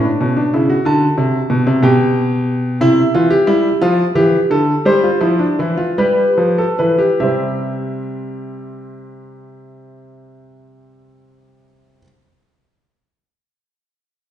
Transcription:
0, 0, Header, 1, 2, 480
1, 0, Start_track
1, 0, Key_signature, 0, "major"
1, 0, Tempo, 652174
1, 625, Time_signature, 6, 3, 24, 8
1, 2548, Tempo, 697674
1, 3508, Tempo, 738916
1, 3988, Tempo, 779221
1, 4468, Tempo, 832178
1, 4948, Tempo, 854701
1, 8933, End_track
2, 0, Start_track
2, 0, Title_t, "Grand piano"
2, 0, Program_c, 0, 0
2, 0, Note_on_c, 0, 83, 82
2, 28, Note_on_c, 0, 62, 71
2, 144, Note_off_c, 0, 62, 0
2, 152, Note_on_c, 0, 47, 91
2, 153, Note_on_c, 0, 61, 76
2, 267, Note_off_c, 0, 61, 0
2, 270, Note_on_c, 0, 62, 83
2, 299, Note_off_c, 0, 47, 0
2, 385, Note_off_c, 0, 62, 0
2, 395, Note_on_c, 0, 64, 79
2, 397, Note_on_c, 0, 49, 88
2, 507, Note_off_c, 0, 64, 0
2, 512, Note_on_c, 0, 66, 87
2, 541, Note_off_c, 0, 49, 0
2, 593, Note_off_c, 0, 83, 0
2, 628, Note_on_c, 0, 50, 108
2, 634, Note_on_c, 0, 81, 91
2, 774, Note_off_c, 0, 50, 0
2, 866, Note_on_c, 0, 48, 97
2, 1012, Note_off_c, 0, 48, 0
2, 1103, Note_on_c, 0, 47, 97
2, 1217, Note_off_c, 0, 47, 0
2, 1227, Note_on_c, 0, 48, 104
2, 1317, Note_off_c, 0, 66, 0
2, 1322, Note_off_c, 0, 81, 0
2, 1339, Note_off_c, 0, 48, 0
2, 1344, Note_on_c, 0, 47, 108
2, 1345, Note_on_c, 0, 67, 94
2, 1350, Note_on_c, 0, 79, 94
2, 2040, Note_off_c, 0, 47, 0
2, 2040, Note_off_c, 0, 67, 0
2, 2043, Note_off_c, 0, 79, 0
2, 2067, Note_on_c, 0, 48, 99
2, 2069, Note_on_c, 0, 64, 116
2, 2069, Note_on_c, 0, 76, 93
2, 2215, Note_off_c, 0, 48, 0
2, 2217, Note_off_c, 0, 64, 0
2, 2314, Note_on_c, 0, 52, 98
2, 2315, Note_on_c, 0, 65, 106
2, 2427, Note_off_c, 0, 65, 0
2, 2432, Note_on_c, 0, 67, 105
2, 2463, Note_off_c, 0, 52, 0
2, 2548, Note_off_c, 0, 67, 0
2, 2554, Note_on_c, 0, 64, 108
2, 2557, Note_on_c, 0, 55, 95
2, 2697, Note_off_c, 0, 64, 0
2, 2699, Note_off_c, 0, 55, 0
2, 2791, Note_on_c, 0, 65, 119
2, 2794, Note_on_c, 0, 53, 99
2, 2936, Note_off_c, 0, 65, 0
2, 2938, Note_off_c, 0, 53, 0
2, 3024, Note_on_c, 0, 52, 95
2, 3025, Note_on_c, 0, 67, 110
2, 3172, Note_off_c, 0, 52, 0
2, 3173, Note_off_c, 0, 67, 0
2, 3265, Note_on_c, 0, 50, 91
2, 3268, Note_on_c, 0, 69, 99
2, 3417, Note_off_c, 0, 50, 0
2, 3419, Note_off_c, 0, 69, 0
2, 3485, Note_off_c, 0, 76, 0
2, 3505, Note_on_c, 0, 55, 98
2, 3507, Note_on_c, 0, 67, 95
2, 3510, Note_on_c, 0, 72, 97
2, 3622, Note_off_c, 0, 67, 0
2, 3623, Note_on_c, 0, 65, 85
2, 3653, Note_off_c, 0, 55, 0
2, 3735, Note_on_c, 0, 64, 92
2, 3737, Note_on_c, 0, 53, 91
2, 3740, Note_off_c, 0, 65, 0
2, 3855, Note_on_c, 0, 62, 82
2, 3857, Note_off_c, 0, 64, 0
2, 3890, Note_off_c, 0, 53, 0
2, 3979, Note_off_c, 0, 62, 0
2, 3985, Note_on_c, 0, 52, 92
2, 3989, Note_on_c, 0, 64, 83
2, 4098, Note_on_c, 0, 65, 88
2, 4102, Note_off_c, 0, 64, 0
2, 4132, Note_off_c, 0, 52, 0
2, 4204, Note_off_c, 0, 72, 0
2, 4217, Note_off_c, 0, 65, 0
2, 4224, Note_on_c, 0, 67, 93
2, 4225, Note_on_c, 0, 55, 95
2, 4226, Note_on_c, 0, 71, 92
2, 4376, Note_off_c, 0, 55, 0
2, 4468, Note_on_c, 0, 53, 89
2, 4575, Note_off_c, 0, 67, 0
2, 4588, Note_on_c, 0, 69, 82
2, 4615, Note_off_c, 0, 53, 0
2, 4697, Note_off_c, 0, 71, 0
2, 4702, Note_off_c, 0, 69, 0
2, 4705, Note_on_c, 0, 71, 84
2, 4710, Note_on_c, 0, 52, 78
2, 4819, Note_on_c, 0, 67, 88
2, 4822, Note_off_c, 0, 71, 0
2, 4859, Note_off_c, 0, 52, 0
2, 4935, Note_off_c, 0, 67, 0
2, 4944, Note_on_c, 0, 48, 75
2, 4944, Note_on_c, 0, 67, 81
2, 4944, Note_on_c, 0, 76, 78
2, 4961, Note_on_c, 0, 55, 69
2, 4961, Note_on_c, 0, 60, 73
2, 7632, Note_off_c, 0, 48, 0
2, 7632, Note_off_c, 0, 67, 0
2, 7632, Note_off_c, 0, 76, 0
2, 7649, Note_off_c, 0, 55, 0
2, 7649, Note_off_c, 0, 60, 0
2, 8933, End_track
0, 0, End_of_file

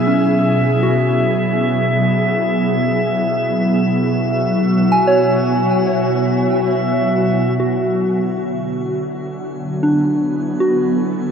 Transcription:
0, 0, Header, 1, 4, 480
1, 0, Start_track
1, 0, Tempo, 500000
1, 10863, End_track
2, 0, Start_track
2, 0, Title_t, "Synth texture"
2, 0, Program_c, 0, 99
2, 0, Note_on_c, 0, 76, 80
2, 7289, Note_off_c, 0, 76, 0
2, 7294, Note_on_c, 0, 80, 82
2, 10863, Note_off_c, 0, 80, 0
2, 10863, End_track
3, 0, Start_track
3, 0, Title_t, "Synth bell"
3, 0, Program_c, 1, 98
3, 0, Control_c, 1, 64, 127
3, 69, Note_on_c, 1, 61, 60
3, 796, Note_on_c, 1, 66, 58
3, 950, Note_off_c, 1, 61, 0
3, 3619, Note_off_c, 1, 66, 0
3, 4721, Note_on_c, 1, 80, 58
3, 4872, Note_on_c, 1, 73, 72
3, 7289, Control_c, 1, 64, 0
3, 7293, Note_on_c, 1, 66, 42
3, 7475, Control_c, 1, 64, 127
3, 7623, Note_off_c, 1, 80, 0
3, 7774, Note_off_c, 1, 73, 0
3, 9436, Note_on_c, 1, 62, 51
3, 10136, Note_off_c, 1, 66, 0
3, 10178, Note_on_c, 1, 66, 59
3, 10323, Note_off_c, 1, 62, 0
3, 10863, Note_off_c, 1, 66, 0
3, 10863, End_track
4, 0, Start_track
4, 0, Title_t, "Ambient pad"
4, 0, Program_c, 2, 92
4, 0, Note_on_c, 2, 47, 74
4, 0, Note_on_c, 2, 54, 79
4, 0, Note_on_c, 2, 59, 66
4, 0, Note_on_c, 2, 64, 64
4, 0, Note_on_c, 2, 68, 93
4, 3164, Note_on_c, 2, 66, 84
4, 3383, Note_off_c, 2, 68, 0
4, 7267, Note_off_c, 2, 59, 0
4, 7272, Note_off_c, 2, 54, 0
4, 7272, Note_off_c, 2, 64, 0
4, 7273, Note_on_c, 2, 50, 63
4, 7276, Note_off_c, 2, 47, 0
4, 7753, Note_on_c, 2, 54, 62
4, 8537, Note_on_c, 2, 59, 77
4, 8911, Note_on_c, 2, 64, 62
4, 9105, Note_off_c, 2, 66, 0
4, 9718, Note_on_c, 2, 69, 74
4, 10863, Note_off_c, 2, 50, 0
4, 10863, Note_off_c, 2, 54, 0
4, 10863, Note_off_c, 2, 59, 0
4, 10863, Note_off_c, 2, 64, 0
4, 10863, Note_off_c, 2, 69, 0
4, 10863, End_track
0, 0, End_of_file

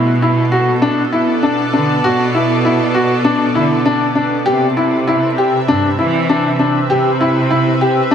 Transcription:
0, 0, Header, 1, 4, 480
1, 0, Start_track
1, 0, Tempo, 606061
1, 1617, Time_signature, 4, 2, 24, 8
1, 6454, End_track
2, 0, Start_track
2, 0, Title_t, "Analog synth pad"
2, 0, Program_c, 0, 89
2, 0, Note_on_c, 0, 47, 75
2, 0, Note_on_c, 0, 59, 88
2, 0, Note_on_c, 0, 64, 91
2, 124, Note_on_c, 0, 69, 92
2, 326, Note_off_c, 0, 64, 0
2, 871, Note_on_c, 0, 74, 85
2, 3533, Note_on_c, 0, 48, 93
2, 3534, Note_off_c, 0, 47, 0
2, 3537, Note_off_c, 0, 59, 0
2, 3695, Note_on_c, 0, 71, 69
2, 3915, Note_on_c, 0, 60, 85
2, 4050, Note_on_c, 0, 76, 88
2, 4324, Note_off_c, 0, 69, 0
2, 4659, Note_off_c, 0, 74, 0
2, 6454, Note_off_c, 0, 48, 0
2, 6454, Note_off_c, 0, 60, 0
2, 6454, Note_off_c, 0, 71, 0
2, 6454, Note_off_c, 0, 76, 0
2, 6454, End_track
3, 0, Start_track
3, 0, Title_t, "Upright piano"
3, 0, Program_c, 1, 0
3, 177, Note_on_c, 1, 64, 81
3, 322, Note_off_c, 1, 64, 0
3, 410, Note_on_c, 1, 66, 83
3, 558, Note_off_c, 1, 66, 0
3, 648, Note_on_c, 1, 62, 92
3, 797, Note_off_c, 1, 62, 0
3, 891, Note_on_c, 1, 64, 75
3, 1038, Note_off_c, 1, 64, 0
3, 1131, Note_on_c, 1, 62, 82
3, 1279, Note_off_c, 1, 62, 0
3, 1373, Note_on_c, 1, 62, 80
3, 1520, Note_off_c, 1, 62, 0
3, 1617, Note_on_c, 1, 66, 97
3, 1763, Note_off_c, 1, 66, 0
3, 1858, Note_on_c, 1, 64, 78
3, 2003, Note_off_c, 1, 64, 0
3, 2098, Note_on_c, 1, 64, 84
3, 2243, Note_off_c, 1, 64, 0
3, 2333, Note_on_c, 1, 66, 83
3, 2480, Note_off_c, 1, 66, 0
3, 2570, Note_on_c, 1, 62, 91
3, 2718, Note_off_c, 1, 62, 0
3, 2813, Note_on_c, 1, 64, 78
3, 2960, Note_off_c, 1, 64, 0
3, 3053, Note_on_c, 1, 62, 90
3, 3200, Note_off_c, 1, 62, 0
3, 3289, Note_on_c, 1, 62, 77
3, 3437, Note_off_c, 1, 62, 0
3, 3530, Note_on_c, 1, 67, 97
3, 3678, Note_off_c, 1, 67, 0
3, 3777, Note_on_c, 1, 64, 78
3, 3922, Note_off_c, 1, 64, 0
3, 4019, Note_on_c, 1, 64, 86
3, 4164, Note_off_c, 1, 64, 0
3, 4261, Note_on_c, 1, 67, 86
3, 4406, Note_off_c, 1, 67, 0
3, 4501, Note_on_c, 1, 62, 93
3, 4645, Note_off_c, 1, 62, 0
3, 4741, Note_on_c, 1, 64, 76
3, 4885, Note_off_c, 1, 64, 0
3, 4984, Note_on_c, 1, 62, 89
3, 5128, Note_off_c, 1, 62, 0
3, 5221, Note_on_c, 1, 62, 77
3, 5365, Note_off_c, 1, 62, 0
3, 5464, Note_on_c, 1, 67, 94
3, 5607, Note_off_c, 1, 67, 0
3, 5707, Note_on_c, 1, 64, 78
3, 5850, Note_off_c, 1, 64, 0
3, 5944, Note_on_c, 1, 64, 84
3, 6087, Note_off_c, 1, 64, 0
3, 6187, Note_on_c, 1, 67, 82
3, 6329, Note_off_c, 1, 67, 0
3, 6424, Note_on_c, 1, 62, 89
3, 6454, Note_off_c, 1, 62, 0
3, 6454, End_track
4, 0, Start_track
4, 0, Title_t, "Cello section"
4, 0, Program_c, 2, 48
4, 0, Note_on_c, 2, 47, 96
4, 1082, Note_off_c, 2, 47, 0
4, 1377, Note_on_c, 2, 50, 79
4, 1547, Note_off_c, 2, 50, 0
4, 1619, Note_on_c, 2, 47, 102
4, 2762, Note_off_c, 2, 47, 0
4, 2820, Note_on_c, 2, 50, 91
4, 2989, Note_off_c, 2, 50, 0
4, 3539, Note_on_c, 2, 48, 99
4, 4442, Note_off_c, 2, 48, 0
4, 4500, Note_on_c, 2, 43, 82
4, 4669, Note_off_c, 2, 43, 0
4, 4743, Note_on_c, 2, 52, 104
4, 5284, Note_off_c, 2, 52, 0
4, 5460, Note_on_c, 2, 48, 93
4, 6362, Note_off_c, 2, 48, 0
4, 6454, End_track
0, 0, End_of_file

